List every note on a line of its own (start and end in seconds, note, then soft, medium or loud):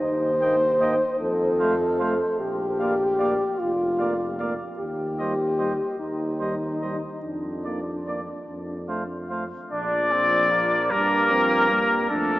0.00 1.01 D#2 medium
0.00 1.18 C5 medium
0.41 0.55 A#3 soft
0.41 0.56 D#5 soft
0.41 0.56 G5 medium
0.80 0.95 A#3 medium
0.80 0.95 D#5 soft
0.80 0.95 G5 soft
1.20 2.20 F2 medium
1.20 2.37 A4 medium
1.59 1.75 A3 soft
1.59 1.74 C5 soft
1.59 1.74 F5 soft
1.99 2.15 A3 medium
1.99 2.14 C5 medium
1.99 2.14 F5 soft
2.39 3.40 A#1 medium
2.39 3.60 G4 medium
2.79 2.95 A#3 soft
2.79 2.94 D5 soft
2.79 2.94 F5 medium
3.19 3.35 A#3 soft
3.19 3.33 D5 soft
3.19 3.34 F5 soft
3.59 4.60 F1 medium
3.59 4.51 F4 medium
3.99 4.14 A#3 soft
3.99 4.13 D5 medium
3.99 4.13 F5 soft
4.39 4.54 A#3 soft
4.39 4.53 D5 soft
4.39 4.53 F5 soft
4.78 5.79 D#2 medium
4.78 5.95 G4 medium
5.19 5.35 G3 soft
5.19 5.34 C5 soft
5.19 5.33 D#5 soft
5.58 5.74 G3 soft
5.58 5.73 C5 soft
5.58 5.73 D#5 soft
5.99 7.03 D#2 medium
5.99 7.21 D#4 medium
6.39 6.55 G3 soft
6.39 6.54 C5 soft
6.39 6.56 D#5 soft
6.82 6.97 G3 soft
6.82 6.97 C5 soft
6.82 6.97 D#5 soft
7.24 8.27 F2 soft
7.24 9.26 D4 soft
7.64 7.80 A#3 soft
7.64 7.79 D5 soft
7.64 7.80 D5 soft
8.06 8.21 A#3 soft
8.06 8.21 D5 soft
8.06 8.22 D5 soft
8.48 9.51 F2 soft
8.88 9.03 A3 soft
8.88 9.03 C5 soft
8.88 9.03 F5 soft
9.29 9.45 A3 soft
9.29 9.45 C5 soft
9.29 9.44 F5 soft
9.70 10.92 A#1 medium
9.70 10.92 F3 soft
9.70 10.13 D4 medium
9.70 10.92 D5 medium
10.12 10.53 C4 medium
10.51 12.10 A#3 medium
10.90 12.10 G2 medium
10.90 11.32 G3 medium
10.90 11.33 D4 medium
10.90 12.09 A#4 medium
11.30 11.71 F3 medium
11.30 11.70 C4 medium
11.70 12.09 G3 medium
11.70 12.10 A#3 medium
12.10 12.39 F2 medium
12.10 12.39 A3 medium
12.10 12.39 D4 medium
12.10 12.39 A4 medium